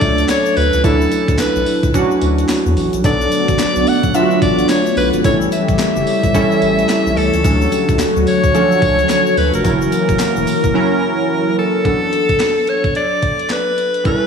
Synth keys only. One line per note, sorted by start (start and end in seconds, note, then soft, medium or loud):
0.00 0.84 F#3 medium
0.00 0.63 A3 medium
0.00 0.84 C#4 medium
0.00 0.84 D4 medium
0.00 3.05 A4 medium
0.84 1.73 F#3 medium
0.84 1.74 C#4 medium
0.84 1.74 D4 medium
0.84 1.74 E4 medium
1.94 2.84 F#3 medium
1.94 2.84 C#4 medium
1.94 2.84 D4 medium
1.94 2.84 F#4 medium
3.04 3.94 F#3 medium
3.04 3.94 B3 medium
3.04 3.94 D4 medium
3.04 3.94 A4 medium
4.14 5.04 F#3 medium
4.14 5.04 B3 medium
4.14 5.04 D4 medium
4.14 4.23 F4 medium
4.22 5.08 F#4 medium
5.24 6.14 G3 medium
5.24 6.14 C#4 medium
5.24 6.14 E4 medium
5.24 6.15 A4 medium
6.34 7.24 G3 loud
6.34 7.24 C#4 medium
6.34 7.24 E4 medium
6.34 7.25 A4 loud
7.44 8.34 F#3 medium
7.44 8.34 C#4 medium
7.44 8.35 D4 medium
7.44 8.35 A4 medium
8.54 8.62 F3 medium
8.54 9.44 C#4 medium
8.54 9.44 D4 medium
8.54 9.45 A4 medium
8.61 9.47 F#3 medium
9.64 10.54 F#3 medium
9.64 10.54 C#4 medium
9.64 10.54 E4 medium
9.64 10.55 A#4 medium
10.74 11.64 F#3 medium
10.74 11.64 C#4 medium
10.74 11.65 E4 medium
10.74 11.65 A#4 loud
11.84 14.01 F#3 medium
11.84 14.01 B3 soft
11.84 14.02 D4 medium
11.84 14.02 A4 medium
14.04 14.27 G3 medium
14.04 14.27 C#4 soft
14.04 14.27 E4 soft
14.04 14.27 A4 medium